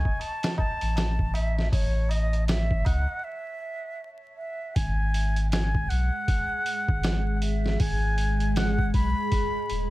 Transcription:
Already playing: G#5
0.05 kick, tabla na
0.19 A5, open hi-hat, tabla na
0.43 snare, open hi-hat, tabla na
0.58 A5, kick, tabla na
0.80 A1, open hi-hat, tabla na
0.96 snare, open hi-hat, tabla na
1.18 kick, tabla na
1.34 E5, open hi-hat, tabla na
1.57 snare, tabla na
1.72 A1 C#5, kick, open hi-hat, tabla na
1.93 tabla na
2.09 D#5, open hi-hat, tabla na
2.33 closed hi-hat, tabla na
2.48 E5, snare, open hi-hat, tabla na
2.70 kick, tabla na
2.85 C#2 F#5, kick, open hi-hat, tabla na
3.08 tabla na
3.24 E5
4.37 E5
4.75 G#1 G#3 G#4 G#5, kick, open hi-hat
5.14 open hi-hat
5.36 closed hi-hat
5.51 G#5, snare, open hi-hat
5.75 kick
5.89 B1 F#5, open hi-hat
6.28 kick, open hi-hat
6.66 open hi-hat
6.89 G#1, kick
7.03 snare, open hi-hat
7.37 F#5
7.42 E5, open hi-hat
7.66 snare
7.80 G#1 G#5, kick, open hi-hat
8.18 open hi-hat
8.40 closed hi-hat
8.56 F#5, snare, open hi-hat
8.79 kick
8.94 B1 B5, kick, open hi-hat
9.32 kick, open hi-hat
9.70 D#1, open hi-hat

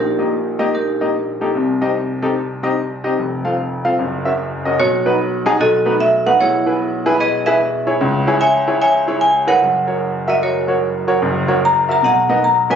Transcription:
Already playing: A#1 A#2 D#4 G4 A#4
0.19 A#3 D#4 G4 D#5
0.59 A#3 D#4 G4 D#5
0.75 D#4 G4 A#4
1.01 A#3 D#4 G4 D#5
1.41 A#3 D#4 G4 A4
1.55 C2 C3
1.81 C4 D#4 G4 D#5
2.22 C4 D#4 G4 A4
2.63 C4 D#4 G4 D#5
3.04 C4 D#4 G4 D#5
3.18 F1 F2
3.45 C4 F4 A4 F5
3.85 C4 F4 A4 F5
3.99 F#1 F#2
4.25 C#4 F#4 A#4 E5
4.65 C#4 F#4 A#4 D#5
4.79 B1 B2 F#4 C#5
5.06 D#4 F#4 B4
5.46 D#4 F#4 G#4
5.60 B1 B2 F#4 A4 D#5
5.85 A3 B3 D#4 F#4 B4
6.00 E5
6.26 A3 B3 D#4 F#4 B4 F#5
6.39 B1 B2 E4 G#4 C#5
6.66 E4 G#4 B4
7.06 E4 G#4 B4
7.20 G#4 B4 D#5
7.46 E4 G#4 B4 E5
7.87 E4 G#4 C#5
8.01 C#2 C#3
8.27 E4 G#4 C#5
8.41 C#5 E5 G#5
8.67 E4 G#4 C#5
8.82 C#5 E5 G#5
9.08 E4 G#4 C#5
9.21 G#5
9.47 E4 G#4 A#4 B4 C#5 F#5
9.62 F#1 F#2
9.87 F#4 A#4 C#5
10.28 F#4 A#4 D#5 E5
10.43 F#4 A#4 C#5
10.68 F#4 A#4 C#5
11.08 F#4 A#4 C#5
11.22 F#1 F#2
11.48 F#4 A#4 C#5
11.65 A#5
11.89 F#4 A#4 E5 A#5
12.02 B1 B2 D#5 F#5 A#5
12.29 B3 D#4 F#4 A#4 D#5
12.44 A#5
12.70 B3 D#4 F#4 A#4 B4 C#5 D#5 G#5

